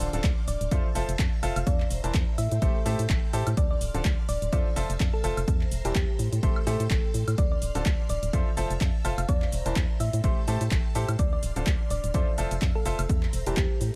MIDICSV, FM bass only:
0, 0, Header, 1, 2, 480
1, 0, Start_track
1, 0, Key_signature, -1, "minor"
1, 0, Tempo, 476190
1, 1680, Time_signature, 4, 2, 24, 8
1, 14064, End_track
2, 0, Start_track
2, 0, Title_t, "FM bass"
2, 0, Program_c, 0, 39
2, 134, Note_on_c, 0, 26, 82
2, 211, Note_off_c, 0, 26, 0
2, 240, Note_on_c, 0, 38, 88
2, 338, Note_off_c, 0, 38, 0
2, 479, Note_on_c, 0, 26, 92
2, 578, Note_off_c, 0, 26, 0
2, 615, Note_on_c, 0, 26, 97
2, 691, Note_off_c, 0, 26, 0
2, 720, Note_on_c, 0, 41, 80
2, 818, Note_off_c, 0, 41, 0
2, 959, Note_on_c, 0, 29, 94
2, 1057, Note_off_c, 0, 29, 0
2, 1094, Note_on_c, 0, 29, 82
2, 1171, Note_off_c, 0, 29, 0
2, 1200, Note_on_c, 0, 41, 88
2, 1298, Note_off_c, 0, 41, 0
2, 1439, Note_on_c, 0, 29, 88
2, 1537, Note_off_c, 0, 29, 0
2, 1574, Note_on_c, 0, 29, 100
2, 1651, Note_off_c, 0, 29, 0
2, 1680, Note_on_c, 0, 40, 99
2, 1863, Note_off_c, 0, 40, 0
2, 1920, Note_on_c, 0, 28, 84
2, 2018, Note_off_c, 0, 28, 0
2, 2055, Note_on_c, 0, 28, 82
2, 2131, Note_off_c, 0, 28, 0
2, 2160, Note_on_c, 0, 40, 88
2, 2258, Note_off_c, 0, 40, 0
2, 2402, Note_on_c, 0, 45, 94
2, 2499, Note_off_c, 0, 45, 0
2, 2538, Note_on_c, 0, 45, 92
2, 2613, Note_off_c, 0, 45, 0
2, 2640, Note_on_c, 0, 33, 83
2, 2738, Note_off_c, 0, 33, 0
2, 2883, Note_on_c, 0, 45, 97
2, 2980, Note_off_c, 0, 45, 0
2, 3017, Note_on_c, 0, 45, 82
2, 3093, Note_off_c, 0, 45, 0
2, 3121, Note_on_c, 0, 33, 92
2, 3218, Note_off_c, 0, 33, 0
2, 3362, Note_on_c, 0, 45, 88
2, 3459, Note_off_c, 0, 45, 0
2, 3497, Note_on_c, 0, 45, 99
2, 3573, Note_off_c, 0, 45, 0
2, 3601, Note_on_c, 0, 38, 97
2, 3783, Note_off_c, 0, 38, 0
2, 3842, Note_on_c, 0, 26, 81
2, 3939, Note_off_c, 0, 26, 0
2, 3977, Note_on_c, 0, 26, 83
2, 4052, Note_off_c, 0, 26, 0
2, 4082, Note_on_c, 0, 38, 90
2, 4179, Note_off_c, 0, 38, 0
2, 4322, Note_on_c, 0, 26, 95
2, 4419, Note_off_c, 0, 26, 0
2, 4457, Note_on_c, 0, 26, 97
2, 4532, Note_off_c, 0, 26, 0
2, 4562, Note_on_c, 0, 41, 80
2, 4659, Note_off_c, 0, 41, 0
2, 4801, Note_on_c, 0, 29, 95
2, 4899, Note_off_c, 0, 29, 0
2, 4936, Note_on_c, 0, 29, 86
2, 5012, Note_off_c, 0, 29, 0
2, 5041, Note_on_c, 0, 41, 90
2, 5139, Note_off_c, 0, 41, 0
2, 5281, Note_on_c, 0, 29, 91
2, 5379, Note_off_c, 0, 29, 0
2, 5416, Note_on_c, 0, 29, 97
2, 5492, Note_off_c, 0, 29, 0
2, 5521, Note_on_c, 0, 40, 104
2, 5703, Note_off_c, 0, 40, 0
2, 5761, Note_on_c, 0, 28, 83
2, 5859, Note_off_c, 0, 28, 0
2, 5895, Note_on_c, 0, 28, 81
2, 5971, Note_off_c, 0, 28, 0
2, 6001, Note_on_c, 0, 40, 88
2, 6099, Note_off_c, 0, 40, 0
2, 6241, Note_on_c, 0, 45, 97
2, 6338, Note_off_c, 0, 45, 0
2, 6375, Note_on_c, 0, 45, 95
2, 6452, Note_off_c, 0, 45, 0
2, 6480, Note_on_c, 0, 33, 81
2, 6578, Note_off_c, 0, 33, 0
2, 6720, Note_on_c, 0, 45, 97
2, 6818, Note_off_c, 0, 45, 0
2, 6854, Note_on_c, 0, 45, 85
2, 6931, Note_off_c, 0, 45, 0
2, 6960, Note_on_c, 0, 33, 88
2, 7058, Note_off_c, 0, 33, 0
2, 7200, Note_on_c, 0, 45, 91
2, 7298, Note_off_c, 0, 45, 0
2, 7334, Note_on_c, 0, 45, 94
2, 7411, Note_off_c, 0, 45, 0
2, 7441, Note_on_c, 0, 38, 98
2, 7623, Note_off_c, 0, 38, 0
2, 7678, Note_on_c, 0, 26, 82
2, 7777, Note_off_c, 0, 26, 0
2, 7813, Note_on_c, 0, 26, 82
2, 7891, Note_off_c, 0, 26, 0
2, 7920, Note_on_c, 0, 38, 88
2, 8018, Note_off_c, 0, 38, 0
2, 8159, Note_on_c, 0, 26, 95
2, 8257, Note_off_c, 0, 26, 0
2, 8293, Note_on_c, 0, 26, 97
2, 8370, Note_off_c, 0, 26, 0
2, 8400, Note_on_c, 0, 41, 79
2, 8498, Note_off_c, 0, 41, 0
2, 8638, Note_on_c, 0, 29, 93
2, 8737, Note_off_c, 0, 29, 0
2, 8772, Note_on_c, 0, 29, 84
2, 8850, Note_off_c, 0, 29, 0
2, 8879, Note_on_c, 0, 41, 89
2, 8978, Note_off_c, 0, 41, 0
2, 9118, Note_on_c, 0, 29, 90
2, 9217, Note_off_c, 0, 29, 0
2, 9251, Note_on_c, 0, 29, 97
2, 9330, Note_off_c, 0, 29, 0
2, 9360, Note_on_c, 0, 40, 98
2, 9543, Note_off_c, 0, 40, 0
2, 9599, Note_on_c, 0, 28, 84
2, 9698, Note_off_c, 0, 28, 0
2, 9734, Note_on_c, 0, 28, 87
2, 9811, Note_off_c, 0, 28, 0
2, 9840, Note_on_c, 0, 40, 87
2, 9938, Note_off_c, 0, 40, 0
2, 10081, Note_on_c, 0, 45, 97
2, 10178, Note_off_c, 0, 45, 0
2, 10216, Note_on_c, 0, 45, 93
2, 10292, Note_off_c, 0, 45, 0
2, 10320, Note_on_c, 0, 33, 81
2, 10418, Note_off_c, 0, 33, 0
2, 10561, Note_on_c, 0, 45, 95
2, 10658, Note_off_c, 0, 45, 0
2, 10695, Note_on_c, 0, 45, 85
2, 10771, Note_off_c, 0, 45, 0
2, 10800, Note_on_c, 0, 33, 88
2, 10898, Note_off_c, 0, 33, 0
2, 11041, Note_on_c, 0, 45, 90
2, 11138, Note_off_c, 0, 45, 0
2, 11174, Note_on_c, 0, 45, 100
2, 11251, Note_off_c, 0, 45, 0
2, 11280, Note_on_c, 0, 38, 104
2, 11463, Note_off_c, 0, 38, 0
2, 11520, Note_on_c, 0, 26, 85
2, 11618, Note_off_c, 0, 26, 0
2, 11654, Note_on_c, 0, 26, 84
2, 11731, Note_off_c, 0, 26, 0
2, 11760, Note_on_c, 0, 38, 88
2, 11858, Note_off_c, 0, 38, 0
2, 12000, Note_on_c, 0, 26, 95
2, 12098, Note_off_c, 0, 26, 0
2, 12135, Note_on_c, 0, 26, 96
2, 12212, Note_off_c, 0, 26, 0
2, 12239, Note_on_c, 0, 41, 81
2, 12338, Note_off_c, 0, 41, 0
2, 12478, Note_on_c, 0, 29, 94
2, 12577, Note_off_c, 0, 29, 0
2, 12613, Note_on_c, 0, 29, 84
2, 12691, Note_off_c, 0, 29, 0
2, 12719, Note_on_c, 0, 41, 88
2, 12818, Note_off_c, 0, 41, 0
2, 12957, Note_on_c, 0, 29, 89
2, 13057, Note_off_c, 0, 29, 0
2, 13092, Note_on_c, 0, 29, 100
2, 13170, Note_off_c, 0, 29, 0
2, 13199, Note_on_c, 0, 40, 101
2, 13382, Note_off_c, 0, 40, 0
2, 13438, Note_on_c, 0, 28, 84
2, 13537, Note_off_c, 0, 28, 0
2, 13573, Note_on_c, 0, 28, 83
2, 13651, Note_off_c, 0, 28, 0
2, 13679, Note_on_c, 0, 40, 87
2, 13778, Note_off_c, 0, 40, 0
2, 13918, Note_on_c, 0, 45, 94
2, 14017, Note_off_c, 0, 45, 0
2, 14064, End_track
0, 0, End_of_file